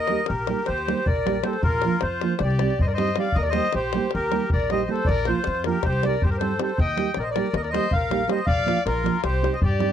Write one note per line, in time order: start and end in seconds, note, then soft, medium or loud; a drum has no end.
0.00 0.11 D#2 medium
0.00 0.24 A#4 medium
0.00 0.27 D#5 loud
0.07 0.19 G3 medium
0.07 0.19 A#3 medium
0.07 0.19 D#4 medium
0.07 0.19 G4 medium
0.07 davul high medium
0.26 0.52 A#1 medium
0.26 0.64 G4 medium
0.26 0.67 A#4 medium
0.26 davul high medium
0.47 0.58 G3 medium
0.47 0.59 A#3 medium
0.47 0.59 D#4 medium
0.47 0.59 G4 medium
0.47 davul high medium
0.66 0.91 D#2 medium
0.66 1.04 G4 medium
0.66 1.07 C5 medium
0.66 davul high medium
0.78 davul high soft
0.87 0.98 G3 medium
0.87 0.98 A#3 medium
0.87 0.99 D#4 medium
0.87 0.99 G4 medium
0.87 davul high medium
0.98 davul high soft
1.06 1.40 A#1 medium
1.06 1.42 A#4 medium
1.06 1.44 D5 medium
1.06 davul low medium
1.16 davul high soft
1.25 1.36 G3 medium
1.25 1.36 A#3 medium
1.25 1.36 D#4 medium
1.25 1.36 G4 medium
1.25 davul high medium
1.35 davul high soft
1.43 1.54 G3 medium
1.43 1.54 A#3 medium
1.43 1.54 D#4 medium
1.43 1.55 G4 medium
1.43 1.61 A4 medium
1.43 1.62 C5 medium
1.43 davul high medium
1.53 davul high soft
1.63 1.86 A#1 loud
1.63 1.99 F4 medium
1.63 2.02 A#4 loud
1.63 davul low medium
1.72 davul high soft
1.82 1.94 F3 medium
1.82 1.94 A#3 medium
1.82 1.94 D4 medium
1.82 davul high medium
1.86 1.95 F4 medium
2.01 2.25 F2 medium
2.01 2.38 F4 medium
2.01 2.41 C5 medium
2.01 davul high medium
2.21 2.32 F3 medium
2.21 2.32 A#3 medium
2.21 2.33 D4 medium
2.21 2.33 F4 medium
2.21 davul high medium
2.39 2.64 C2 medium
2.39 2.81 D5 medium
2.39 davul high medium
2.44 2.78 G4 medium
2.51 davul high soft
2.59 2.71 G3 medium
2.59 2.71 C4 medium
2.59 2.71 D#4 medium
2.59 2.72 G4 medium
2.59 davul high medium
2.70 davul high soft
2.79 3.14 G2 medium
2.79 2.87 C5 medium
2.79 2.87 D#5 medium
2.79 davul low medium
2.87 2.93 A#4 medium
2.87 2.93 D5 medium
2.87 davul high soft
2.94 3.09 G3 medium
2.94 3.16 C5 medium
2.94 3.18 D#5 medium
2.98 3.09 C4 medium
2.98 3.09 D#4 medium
2.98 3.09 G4 medium
2.98 davul high medium
3.07 davul high soft
3.16 3.27 G3 medium
3.16 3.27 C4 medium
3.16 3.28 D#4 medium
3.16 3.28 G4 medium
3.16 3.35 D5 medium
3.16 3.36 F5 medium
3.16 davul high medium
3.25 davul high soft
3.32 3.59 D#2 loud
3.32 3.42 D#5 loud
3.32 davul low medium
3.38 3.42 A#4 medium
3.42 3.49 A#4 medium
3.42 3.49 D5 medium
3.42 davul high soft
3.49 3.65 G3 medium
3.49 3.72 C5 medium
3.49 3.74 D#5 loud
3.49 davul high medium
3.54 3.65 A#3 medium
3.54 3.66 D#4 medium
3.54 3.66 G4 medium
3.73 3.98 A#1 medium
3.73 4.10 G4 medium
3.73 4.11 C5 medium
3.73 davul high medium
3.93 4.04 G3 medium
3.93 4.05 A#3 medium
3.93 4.06 D#4 medium
3.93 4.06 G4 medium
3.93 davul high medium
4.11 4.50 A#4 medium
4.11 davul high medium
4.15 4.37 D#2 medium
4.15 4.50 G4 medium
4.21 davul high soft
4.31 4.43 G3 medium
4.31 4.43 A#3 medium
4.31 4.43 D#4 medium
4.31 4.44 G4 medium
4.31 davul high medium
4.40 davul high soft
4.50 4.86 A#1 medium
4.50 4.70 A#4 medium
4.50 4.70 D5 loud
4.50 davul low medium
4.60 davul high soft
4.70 4.81 G3 medium
4.70 4.81 A#3 medium
4.70 4.82 D#4 medium
4.70 4.82 G4 medium
4.70 4.88 C5 medium
4.70 4.89 D#5 medium
4.70 davul high medium
4.78 davul high soft
4.88 4.99 G3 medium
4.88 4.99 A#3 medium
4.88 4.99 D#4 soft
4.88 4.99 G4 medium
4.88 5.07 A4 medium
4.88 5.07 C5 medium
4.96 davul high soft
5.05 5.31 A#1 loud
5.05 5.25 D5 loud
5.05 davul low medium
5.09 5.27 A#4 medium
5.15 davul high soft
5.25 5.38 F3 medium
5.25 5.38 A#3 medium
5.25 5.38 D4 soft
5.25 5.38 F4 medium
5.25 5.63 C5 medium
5.25 davul high medium
5.29 5.64 F4 medium
5.44 5.70 F2 loud
5.44 davul high medium
5.55 davul high soft
5.64 5.76 F3 medium
5.64 5.76 A#3 medium
5.64 5.76 D4 medium
5.64 5.77 F4 medium
5.64 5.84 A#4 medium
5.64 davul high medium
5.69 5.84 G4 medium
5.83 6.09 C2 medium
5.83 6.05 C5 medium
5.83 davul high medium
5.83 davul low medium
5.88 6.05 G4 medium
5.93 davul high soft
6.03 6.14 G3 medium
6.03 6.15 C4 medium
6.03 6.15 D#4 medium
6.03 6.15 G4 medium
6.03 6.22 D5 loud
6.03 davul high medium
6.08 6.23 A#4 medium
6.22 6.56 G2 medium
6.22 6.30 G4 medium
6.22 6.30 C5 medium
6.22 davul low medium
6.30 6.37 G4 medium
6.30 6.37 A#4 medium
6.30 davul high soft
6.37 6.51 G3 medium
6.37 6.52 C4 medium
6.37 6.60 A4 medium
6.37 6.61 C5 medium
6.37 davul high medium
6.42 6.52 D#4 medium
6.42 6.52 G4 medium
6.59 6.69 G3 medium
6.59 6.70 C4 medium
6.59 6.70 D#4 soft
6.59 6.71 G4 medium
6.59 6.77 A4 medium
6.59 6.79 C5 medium
6.59 davul high medium
6.69 davul high soft
6.78 7.02 D#2 loud
6.78 7.14 D#5 loud
6.78 7.18 G5 loud
6.78 davul low medium
6.87 davul high soft
6.96 7.07 G3 medium
6.96 7.08 A#3 medium
6.96 7.08 D#4 medium
6.96 7.09 G4 medium
6.96 davul high medium
7.14 7.39 A#1 medium
7.14 7.24 D5 medium
7.14 davul high medium
7.19 7.22 A#4 medium
7.19 7.29 C5 medium
7.19 7.30 D#5 medium
7.31 7.54 A#4 medium
7.31 7.55 D5 loud
7.35 7.46 G3 medium
7.35 7.46 A#3 medium
7.35 7.46 D#4 medium
7.35 7.47 G4 medium
7.35 davul high medium
7.53 7.76 D#2 loud
7.53 7.62 A#4 medium
7.53 7.62 D#5 medium
7.53 davul high medium
7.62 7.69 A#4 medium
7.62 7.68 D5 medium
7.62 davul high soft
7.70 7.84 G3 medium
7.70 7.92 C5 medium
7.70 7.91 D#5 loud
7.74 7.85 A#3 medium
7.74 7.85 D#4 soft
7.74 7.85 G4 medium
7.74 davul high medium
7.91 8.25 A#1 medium
7.91 8.28 A#4 medium
7.91 8.30 F5 loud
7.91 davul low medium
8.01 davul high soft
8.10 8.21 G3 medium
8.10 8.21 A#3 medium
8.10 8.22 D#4 medium
8.10 8.22 G4 medium
8.10 davul high medium
8.21 davul high soft
8.27 8.38 G3 medium
8.27 8.38 A#3 medium
8.27 8.39 D#4 soft
8.27 8.39 G4 medium
8.27 8.46 C5 medium
8.27 8.46 D#5 medium
8.27 davul high medium
8.38 davul high soft
8.46 8.70 A#1 loud
8.46 8.82 D5 medium
8.46 8.82 F5 loud
8.46 davul low medium
8.58 davul high soft
8.65 8.76 F3 medium
8.65 8.77 A#3 medium
8.65 8.77 D4 medium
8.65 8.77 F4 medium
8.65 davul high medium
8.85 9.08 A#1 medium
8.85 9.20 F4 medium
8.85 9.21 A#4 medium
8.85 davul high medium
9.03 9.14 F3 medium
9.03 9.15 A#3 medium
9.03 9.15 D4 medium
9.03 9.15 F4 medium
9.03 davul high medium
9.24 9.46 C2 medium
9.24 9.53 G4 medium
9.24 9.56 C5 medium
9.24 davul high medium
9.34 davul high soft
9.42 9.53 G3 medium
9.42 9.53 C4 medium
9.42 9.53 D#4 medium
9.42 9.54 G4 medium
9.42 davul high medium
9.53 9.60 C5 medium
9.53 9.60 D#5 medium
9.53 davul high soft
9.62 9.92 G2 medium
9.62 9.92 G4 medium
9.62 9.92 D5 loud
9.62 davul low medium
9.71 davul high soft
9.79 9.89 G3 medium
9.79 9.89 C4 medium
9.79 9.90 D#4 medium
9.79 9.90 G4 medium
9.79 davul high medium
9.89 davul high soft